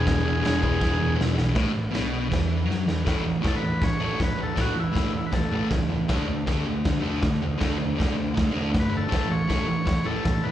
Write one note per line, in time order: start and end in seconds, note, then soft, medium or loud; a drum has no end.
0.06 0.23 E1 loud
0.06 0.23 E2 medium
0.06 0.23 B2 loud
0.06 0.24 E3 loud
0.06 1.15 G#4 medium
0.06 kick loud
0.06 snare loud
0.06 crash medium
0.24 0.41 E1 medium
0.24 0.40 E2 medium
0.24 0.40 B2 loud
0.24 0.41 E3 loud
0.41 0.59 E1 loud
0.41 0.59 E2 loud
0.41 0.60 B2 loud
0.41 0.61 E3 loud
0.41 crash medium
0.46 snare loud
0.60 0.79 E1 medium
0.60 0.79 E2 medium
0.60 0.78 B2 medium
0.60 0.79 E3 medium
0.60 kick medium
0.80 0.97 E1 loud
0.80 0.98 E2 loud
0.80 0.97 B2 loud
0.80 0.98 E3 loud
0.80 kick loud
0.80 snare medium
0.98 1.16 E1 medium
0.98 1.14 E2 medium
0.98 1.16 B2 medium
0.98 1.16 E3 loud
1.16 1.34 E2 loud
1.16 1.34 B2 loud
1.16 1.35 E3 loud
1.21 1.35 E1 medium
1.21 snare loud
1.35 1.53 B1 medium
1.35 1.53 E2 medium
1.35 1.54 B2 medium
1.35 1.54 E3 loud
1.35 snare medium
1.54 1.74 A1 medium
1.54 1.72 A2 loud
1.54 kick loud
1.54 snare loud
1.54 crash medium
1.73 1.93 A1 medium
1.73 1.89 A2 medium
1.91 2.29 B2 loud
1.91 crash medium
1.95 2.29 B1 loud
1.95 snare loud
2.29 2.67 E2 medium
2.29 2.65 E3 loud
2.29 kick loud
2.29 crash medium
2.33 snare loud
2.65 2.86 F#2 medium
2.65 2.85 F#3 loud
2.70 snare medium
2.85 3.05 E2 medium
2.85 3.04 E3 loud
2.85 snare medium
3.05 3.21 A1 medium
3.05 3.23 A2 medium
3.05 3.24 E3 medium
3.05 3.24 A3 loud
3.05 kick loud
3.05 snare loud
3.05 floor tom medium
3.25 3.39 A1 medium
3.25 3.40 A2 medium
3.25 3.41 E3 medium
3.25 floor tom medium
3.41 3.59 A1 medium
3.41 3.60 A2 medium
3.41 3.61 E3 medium
3.41 3.61 A3 loud
3.41 kick loud
3.41 floor tom medium
3.45 3.55 A4 medium
3.45 snare loud
3.56 3.84 B4 loud
3.62 3.76 A1 medium
3.62 3.80 A2 medium
3.62 3.80 E3 medium
3.62 floor tom medium
3.82 3.96 A1 medium
3.82 3.98 A2 medium
3.82 3.99 E3 medium
3.82 4.02 C#5 loud
3.82 kick loud
3.82 snare loud
3.82 floor tom medium
4.00 4.14 A1 medium
4.00 4.18 A2 medium
4.00 4.18 E3 medium
4.00 4.18 A3 loud
4.00 floor tom medium
4.05 4.20 C#5 loud
4.20 4.35 A1 medium
4.20 4.37 A2 medium
4.20 4.37 E3 medium
4.20 4.41 B4 medium
4.20 kick loud
4.20 snare loud
4.20 floor tom medium
4.38 4.52 A1 medium
4.38 4.54 A2 medium
4.38 4.55 E3 medium
4.38 floor tom medium
4.43 4.60 A4 medium
4.55 4.86 A1 loud
4.55 4.74 A2 medium
4.55 4.75 E3 medium
4.55 4.75 A3 medium
4.55 kick loud
4.55 snare loud
4.55 floor tom medium
4.61 4.79 F#4 medium
4.76 4.91 A2 medium
4.76 4.92 E3 medium
4.76 5.13 E4 medium
4.76 floor tom medium
4.93 5.10 A1 medium
4.93 5.12 A2 loud
4.93 5.12 E3 loud
4.93 5.12 A3 loud
4.93 kick medium
4.93 snare loud
4.93 floor tom medium
5.13 5.28 A1 medium
5.13 5.31 A2 medium
5.13 5.31 E3 medium
5.13 floor tom medium
5.18 5.27 E4 medium
5.26 5.33 B4 medium
5.32 5.48 A1 medium
5.32 5.50 A2 medium
5.32 5.50 E3 medium
5.32 5.68 A4 medium
5.32 kick loud
5.32 snare loud
5.32 floor tom medium
5.51 5.66 A1 medium
5.51 5.69 A2 medium
5.51 5.69 E3 medium
5.51 5.70 A3 loud
5.51 floor tom medium
5.70 5.99 C#2 medium
5.70 5.88 A2 medium
5.70 5.88 E3 medium
5.70 kick loud
5.70 snare loud
5.70 floor tom medium
5.89 6.06 A2 medium
5.89 6.07 E3 medium
5.89 floor tom medium
6.08 6.24 D2 medium
6.08 6.26 D3 medium
6.08 6.26 A3 medium
6.08 6.27 D4 medium
6.08 kick loud
6.08 snare loud
6.08 floor tom medium
6.27 6.43 D2 medium
6.27 6.44 D3 medium
6.27 6.44 A3 medium
6.27 floor tom medium
6.47 6.61 D2 medium
6.47 6.64 D3 medium
6.47 6.65 A3 loud
6.47 6.65 D4 loud
6.47 kick loud
6.47 snare loud
6.47 floor tom medium
6.66 6.80 D2 medium
6.66 6.83 D3 medium
6.66 6.83 A3 medium
6.66 floor tom medium
6.85 7.00 D2 medium
6.85 6.99 D3 medium
6.85 7.00 A3 medium
6.85 kick loud
6.85 snare loud
6.85 floor tom medium
7.00 7.19 D3 medium
7.00 7.20 A3 medium
7.00 7.20 D4 loud
7.00 floor tom medium
7.05 7.19 D2 medium
7.21 7.37 D2 medium
7.21 7.38 D3 medium
7.21 7.39 A3 medium
7.21 kick loud
7.21 snare loud
7.21 floor tom medium
7.42 7.57 D2 medium
7.42 7.57 D3 medium
7.42 7.57 A3 medium
7.42 floor tom medium
7.58 7.77 D3 medium
7.58 7.77 A3 medium
7.58 7.77 D4 loud
7.58 kick loud
7.58 snare loud
7.58 floor tom medium
7.62 7.90 D2 loud
7.79 7.95 D3 medium
7.79 7.96 A3 medium
7.79 floor tom medium
7.96 8.12 D3 medium
7.96 8.12 A3 loud
7.96 8.16 D4 loud
8.00 8.14 D2 medium
8.00 kick loud
8.00 snare loud
8.00 floor tom medium
8.13 8.32 D3 medium
8.13 8.32 A3 medium
8.18 8.32 D2 medium
8.18 floor tom medium
8.34 8.50 D3 medium
8.34 8.51 A3 medium
8.34 kick loud
8.34 snare loud
8.34 floor tom medium
8.38 8.51 D2 medium
8.51 8.69 D3 medium
8.51 8.70 A3 medium
8.51 8.71 D4 loud
8.56 8.70 D2 medium
8.56 floor tom medium
8.70 8.89 D3 medium
8.70 8.88 A3 medium
8.70 floor tom medium
8.75 9.03 G1 medium
8.75 kick loud
8.75 snare loud
8.80 8.96 B4 medium
8.90 9.08 D3 medium
8.90 9.08 A3 medium
8.90 floor tom medium
8.97 9.34 A4 medium
9.08 9.26 A2 medium
9.08 9.27 E3 medium
9.08 9.28 A3 loud
9.12 9.27 A1 medium
9.12 kick loud
9.12 snare loud
9.12 floor tom medium
9.28 9.45 A1 medium
9.28 9.46 A2 medium
9.28 9.46 E3 medium
9.28 9.86 C#5 loud
9.28 floor tom medium
9.48 9.64 A1 medium
9.48 9.66 A2 loud
9.48 9.66 E3 medium
9.48 9.67 A3 loud
9.48 kick loud
9.48 snare loud
9.48 floor tom medium
9.67 9.82 A1 medium
9.67 9.85 A2 medium
9.67 9.84 E3 medium
9.67 floor tom medium
9.86 10.01 A1 medium
9.86 10.03 A2 medium
9.86 10.03 E3 medium
9.86 10.07 C#5 medium
9.86 kick loud
9.86 snare loud
9.86 floor tom medium
10.05 10.20 A1 medium
10.05 10.23 A2 medium
10.05 10.23 E3 medium
10.05 10.23 A3 medium
10.05 10.45 A4 medium
10.05 floor tom medium
10.24 10.39 A1 medium
10.24 10.41 A2 medium
10.24 10.41 E3 medium
10.24 kick loud
10.24 snare loud
10.24 floor tom medium
10.43 10.52 A1 medium
10.43 10.52 A2 medium
10.43 10.52 E3 medium
10.43 10.52 B4 medium
10.43 floor tom medium